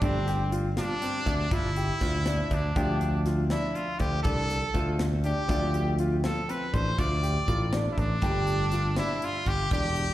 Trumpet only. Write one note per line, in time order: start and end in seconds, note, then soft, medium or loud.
0.04 0.53 C4 medium
0.78 1.55 D4 loud
1.53 2.55 E4 loud
2.54 3.27 D4 medium
3.51 3.77 E4 medium
3.75 4.01 F4 medium
3.99 4.23 G4 medium
4.23 4.95 A4 loud
5.25 5.96 G4 medium
6.24 6.51 A4 medium
6.50 6.75 B4 medium
6.74 7.01 C5 medium
6.99 7.74 D5 loud
7.92 8.00 E4 medium
7.99 8.97 D4 medium
8.98 9.26 E4 medium
9.24 9.49 F4 loud
9.48 9.72 G4 loud
9.72 10.14 G4 loud